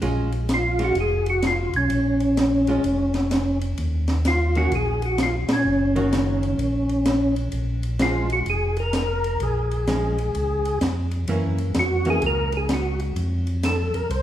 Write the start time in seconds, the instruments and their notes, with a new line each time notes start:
0.02 tonewheel organ A#1, hollow-body jazz guitar G#3 C#4 F4, ride
0.32 ride
0.49 snare, hi-hat pedal, ride
0.54 tonewheel organ F4
0.79 hollow-body jazz guitar G#3 C#4 F4, ride
0.84 tonewheel organ F#4
0.95 tonewheel organ F1, ride
1.00 tonewheel organ G#4
1.26 tonewheel organ F#4, ride
1.42 snare, hi-hat pedal, ride
1.47 tonewheel organ F4
1.73 tonewheel organ B1 C#4, ride
1.90 tonewheel organ A#1, ride
2.20 ride
2.37 snare, hi-hat pedal, ride
2.67 hollow-body jazz guitar G#3 C#4 F4, ride
2.84 tonewheel organ F1, ride
3.14 snare, ride
3.31 snare, hi-hat pedal, ride
3.61 ride
3.78 tonewheel organ D#2, ride
4.08 snare, ride
4.25 tonewheel organ F4, snare, hi-hat pedal, ride
4.55 hollow-body jazz guitar D#3 A#3 C#4 F#4, tonewheel organ F#4, ride
4.72 tonewheel organ A#1 G#4, ride
5.02 tonewheel organ F#4, ride
5.18 snare, hi-hat pedal, ride
5.23 tonewheel organ F4
5.49 tonewheel organ A#2, snare, ride
5.53 tonewheel organ C#4
5.65 tonewheel organ F#1
5.96 hollow-body jazz guitar D#3 A#3 C#4 F#4, ride
6.13 snare, hi-hat pedal, ride
6.43 ride
6.58 tonewheel organ A#1, ride
6.89 ride
7.06 snare, hi-hat pedal, ride
7.36 ride
7.52 tonewheel organ A#1, ride
7.83 ride
7.99 hollow-body jazz guitar F3 G#3 C#4, tonewheel organ F4, snare, hi-hat pedal, ride
8.30 tonewheel organ F#4, ride
8.46 tonewheel organ F1 G#4, ride
8.77 tonewheel organ A#4, ride
8.93 tonewheel organ A#4, snare, hi-hat pedal, ride
9.24 ride
9.40 tonewheel organ A#1 G#4, ride
9.71 ride
9.87 hollow-body jazz guitar F3 G#3 C#4, snare, hi-hat pedal, ride
10.18 ride
10.35 tonewheel organ C#2, ride
10.65 ride
10.81 tonewheel organ F2, snare, hi-hat pedal, ride
11.11 ride
11.28 tonewheel organ F#2, hollow-body jazz guitar E3 A#3 C#4, ride
11.58 ride
11.74 tonewheel organ F2, snare, hi-hat pedal, ride
11.79 tonewheel organ F#4
12.05 hollow-body jazz guitar E3 A#3 C#4, ride
12.10 tonewheel organ G#4
12.22 tonewheel organ C#2, ride
12.27 tonewheel organ A#4
12.52 ride
12.57 tonewheel organ G#4
12.69 snare, hi-hat pedal, ride
12.73 tonewheel organ F#4
13.00 ride
13.16 tonewheel organ F2, ride
13.47 ride
13.63 tonewheel organ A4, snare, hi-hat pedal, ride
13.94 tonewheel organ F2 A#4, ride
14.10 tonewheel organ C2 C5, ride